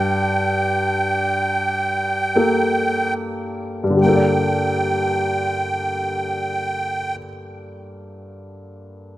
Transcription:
0, 0, Header, 1, 3, 480
1, 0, Start_track
1, 0, Key_signature, -2, "minor"
1, 0, Tempo, 1247401
1, 351, Tempo, 1442308
1, 831, Tempo, 1630435
1, 1313, Time_signature, 3, 2, 24, 8
1, 1791, Tempo, 1562500
1, 2271, Tempo, 1626016
1, 2862, End_track
2, 0, Start_track
2, 0, Title_t, "Accordion"
2, 0, Program_c, 0, 21
2, 0, Note_on_c, 0, 79, 73
2, 1062, Note_off_c, 0, 79, 0
2, 1320, Note_on_c, 0, 79, 63
2, 2264, Note_off_c, 0, 79, 0
2, 2862, End_track
3, 0, Start_track
3, 0, Title_t, "Upright piano"
3, 0, Program_c, 1, 0
3, 0, Control_c, 1, 64, 127
3, 0, Note_on_c, 1, 43, 51
3, 831, Note_on_c, 1, 58, 36
3, 832, Note_on_c, 1, 67, 33
3, 834, Note_on_c, 1, 69, 37
3, 1263, Note_off_c, 1, 43, 0
3, 1268, Note_on_c, 1, 43, 36
3, 1287, Note_on_c, 1, 50, 34
3, 1301, Note_off_c, 1, 58, 0
3, 1302, Note_off_c, 1, 67, 0
3, 1303, Note_off_c, 1, 69, 0
3, 1305, Note_on_c, 1, 55, 33
3, 1318, Control_c, 1, 64, 0
3, 1323, Note_on_c, 1, 58, 36
3, 1340, Note_on_c, 1, 69, 35
3, 1360, Note_on_c, 1, 74, 40
3, 1363, Control_c, 1, 64, 127
3, 2209, Note_off_c, 1, 43, 0
3, 2230, Note_off_c, 1, 50, 0
3, 2248, Note_off_c, 1, 55, 0
3, 2267, Note_off_c, 1, 58, 0
3, 2285, Note_off_c, 1, 69, 0
3, 2304, Note_off_c, 1, 74, 0
3, 2862, End_track
0, 0, End_of_file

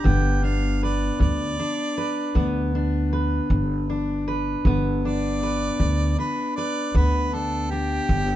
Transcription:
0, 0, Header, 1, 5, 480
1, 0, Start_track
1, 0, Key_signature, 1, "major"
1, 0, Tempo, 765306
1, 33, Time_signature, 12, 3, 24, 8
1, 5242, End_track
2, 0, Start_track
2, 0, Title_t, "Harmonica"
2, 0, Program_c, 0, 22
2, 36, Note_on_c, 0, 79, 80
2, 274, Note_on_c, 0, 77, 68
2, 283, Note_off_c, 0, 79, 0
2, 506, Note_off_c, 0, 77, 0
2, 523, Note_on_c, 0, 74, 77
2, 751, Note_off_c, 0, 74, 0
2, 759, Note_on_c, 0, 74, 96
2, 1692, Note_off_c, 0, 74, 0
2, 3162, Note_on_c, 0, 74, 98
2, 3856, Note_off_c, 0, 74, 0
2, 3886, Note_on_c, 0, 71, 77
2, 4111, Note_off_c, 0, 71, 0
2, 4115, Note_on_c, 0, 74, 93
2, 4367, Note_on_c, 0, 71, 82
2, 4376, Note_off_c, 0, 74, 0
2, 4601, Note_on_c, 0, 69, 86
2, 4611, Note_off_c, 0, 71, 0
2, 4833, Note_on_c, 0, 67, 95
2, 4842, Note_off_c, 0, 69, 0
2, 5242, Note_off_c, 0, 67, 0
2, 5242, End_track
3, 0, Start_track
3, 0, Title_t, "Steel-string acoustic guitar"
3, 0, Program_c, 1, 25
3, 0, Note_on_c, 1, 62, 50
3, 0, Note_on_c, 1, 67, 61
3, 25, Note_on_c, 1, 43, 72
3, 26, Note_on_c, 1, 59, 66
3, 270, Note_off_c, 1, 62, 0
3, 272, Note_on_c, 1, 62, 51
3, 461, Note_off_c, 1, 43, 0
3, 515, Note_off_c, 1, 67, 0
3, 518, Note_on_c, 1, 71, 69
3, 749, Note_on_c, 1, 43, 80
3, 997, Note_off_c, 1, 62, 0
3, 999, Note_on_c, 1, 62, 66
3, 1184, Note_off_c, 1, 43, 0
3, 1236, Note_off_c, 1, 71, 0
3, 1239, Note_on_c, 1, 71, 67
3, 1472, Note_off_c, 1, 59, 0
3, 1472, Note_on_c, 1, 43, 66
3, 1475, Note_on_c, 1, 59, 59
3, 1722, Note_off_c, 1, 62, 0
3, 1725, Note_on_c, 1, 62, 57
3, 1905, Note_off_c, 1, 43, 0
3, 1959, Note_off_c, 1, 71, 0
3, 1961, Note_on_c, 1, 71, 62
3, 2198, Note_on_c, 1, 43, 66
3, 2441, Note_off_c, 1, 62, 0
3, 2444, Note_on_c, 1, 62, 51
3, 2628, Note_off_c, 1, 43, 0
3, 2680, Note_off_c, 1, 71, 0
3, 2682, Note_on_c, 1, 71, 70
3, 2923, Note_on_c, 1, 43, 76
3, 2924, Note_off_c, 1, 59, 0
3, 2926, Note_on_c, 1, 59, 65
3, 3167, Note_off_c, 1, 62, 0
3, 3169, Note_on_c, 1, 62, 59
3, 3350, Note_off_c, 1, 43, 0
3, 3402, Note_off_c, 1, 71, 0
3, 3405, Note_on_c, 1, 71, 68
3, 3633, Note_on_c, 1, 43, 72
3, 3876, Note_off_c, 1, 62, 0
3, 3879, Note_on_c, 1, 62, 63
3, 4065, Note_off_c, 1, 43, 0
3, 4122, Note_off_c, 1, 71, 0
3, 4125, Note_on_c, 1, 71, 69
3, 4356, Note_on_c, 1, 43, 68
3, 4358, Note_off_c, 1, 59, 0
3, 4361, Note_on_c, 1, 59, 56
3, 4597, Note_off_c, 1, 62, 0
3, 4599, Note_on_c, 1, 62, 59
3, 4785, Note_off_c, 1, 43, 0
3, 4839, Note_off_c, 1, 62, 0
3, 4842, Note_on_c, 1, 62, 59
3, 5074, Note_on_c, 1, 43, 72
3, 5242, Note_off_c, 1, 43, 0
3, 5242, Note_off_c, 1, 59, 0
3, 5242, Note_off_c, 1, 62, 0
3, 5242, Note_off_c, 1, 71, 0
3, 5242, End_track
4, 0, Start_track
4, 0, Title_t, "Upright bass"
4, 0, Program_c, 2, 32
4, 34, Note_on_c, 2, 31, 95
4, 681, Note_off_c, 2, 31, 0
4, 755, Note_on_c, 2, 38, 86
4, 970, Note_off_c, 2, 38, 0
4, 1474, Note_on_c, 2, 38, 85
4, 2122, Note_off_c, 2, 38, 0
4, 2196, Note_on_c, 2, 31, 89
4, 2842, Note_off_c, 2, 31, 0
4, 2917, Note_on_c, 2, 31, 91
4, 3562, Note_off_c, 2, 31, 0
4, 3638, Note_on_c, 2, 38, 83
4, 3851, Note_off_c, 2, 38, 0
4, 4358, Note_on_c, 2, 38, 83
4, 5001, Note_off_c, 2, 38, 0
4, 5075, Note_on_c, 2, 31, 94
4, 5242, Note_off_c, 2, 31, 0
4, 5242, End_track
5, 0, Start_track
5, 0, Title_t, "Drums"
5, 34, Note_on_c, 9, 36, 71
5, 96, Note_off_c, 9, 36, 0
5, 755, Note_on_c, 9, 36, 67
5, 818, Note_off_c, 9, 36, 0
5, 1476, Note_on_c, 9, 36, 64
5, 1538, Note_off_c, 9, 36, 0
5, 2196, Note_on_c, 9, 36, 57
5, 2259, Note_off_c, 9, 36, 0
5, 2917, Note_on_c, 9, 36, 76
5, 2979, Note_off_c, 9, 36, 0
5, 3638, Note_on_c, 9, 36, 63
5, 3700, Note_off_c, 9, 36, 0
5, 4357, Note_on_c, 9, 36, 67
5, 4420, Note_off_c, 9, 36, 0
5, 5074, Note_on_c, 9, 36, 60
5, 5137, Note_off_c, 9, 36, 0
5, 5242, End_track
0, 0, End_of_file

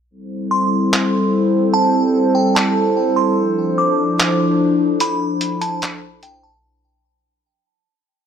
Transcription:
0, 0, Header, 1, 4, 480
1, 0, Start_track
1, 0, Key_signature, 0, "minor"
1, 0, Tempo, 408163
1, 125, Time_signature, 4, 2, 24, 8
1, 9718, End_track
2, 0, Start_track
2, 0, Title_t, "Synth bell"
2, 0, Program_c, 0, 98
2, 601, Note_on_c, 0, 84, 75
2, 1515, Note_off_c, 0, 84, 0
2, 2041, Note_on_c, 0, 81, 105
2, 2719, Note_off_c, 0, 81, 0
2, 2761, Note_on_c, 0, 79, 81
2, 2991, Note_off_c, 0, 79, 0
2, 3000, Note_on_c, 0, 81, 76
2, 3679, Note_off_c, 0, 81, 0
2, 3720, Note_on_c, 0, 84, 70
2, 3950, Note_off_c, 0, 84, 0
2, 4445, Note_on_c, 0, 86, 74
2, 5358, Note_off_c, 0, 86, 0
2, 5891, Note_on_c, 0, 83, 91
2, 6565, Note_off_c, 0, 83, 0
2, 6601, Note_on_c, 0, 81, 73
2, 6831, Note_off_c, 0, 81, 0
2, 7327, Note_on_c, 0, 79, 81
2, 7554, Note_off_c, 0, 79, 0
2, 7567, Note_on_c, 0, 81, 76
2, 7794, Note_off_c, 0, 81, 0
2, 9718, End_track
3, 0, Start_track
3, 0, Title_t, "Analog synth pad"
3, 0, Program_c, 1, 89
3, 126, Note_on_c, 1, 60, 75
3, 127, Note_on_c, 1, 55, 81
3, 127, Note_on_c, 1, 64, 70
3, 127, Note_on_c, 1, 69, 74
3, 127, Note_on_c, 1, 72, 88
3, 3927, Note_off_c, 1, 55, 0
3, 3927, Note_off_c, 1, 60, 0
3, 3965, Note_on_c, 1, 53, 81
3, 3965, Note_on_c, 1, 62, 75
3, 7758, Note_off_c, 1, 69, 0
3, 7759, Note_off_c, 1, 64, 0
3, 7759, Note_off_c, 1, 72, 0
3, 7766, Note_off_c, 1, 53, 0
3, 7766, Note_off_c, 1, 62, 0
3, 9718, End_track
4, 0, Start_track
4, 0, Title_t, "Drums"
4, 1099, Note_on_c, 9, 39, 102
4, 1217, Note_off_c, 9, 39, 0
4, 3020, Note_on_c, 9, 39, 109
4, 3137, Note_off_c, 9, 39, 0
4, 4940, Note_on_c, 9, 39, 108
4, 5058, Note_off_c, 9, 39, 0
4, 5884, Note_on_c, 9, 42, 75
4, 6002, Note_off_c, 9, 42, 0
4, 6362, Note_on_c, 9, 42, 77
4, 6479, Note_off_c, 9, 42, 0
4, 6604, Note_on_c, 9, 42, 54
4, 6722, Note_off_c, 9, 42, 0
4, 6845, Note_on_c, 9, 42, 70
4, 6860, Note_on_c, 9, 39, 106
4, 6963, Note_off_c, 9, 42, 0
4, 6977, Note_off_c, 9, 39, 0
4, 7323, Note_on_c, 9, 42, 69
4, 7440, Note_off_c, 9, 42, 0
4, 9718, End_track
0, 0, End_of_file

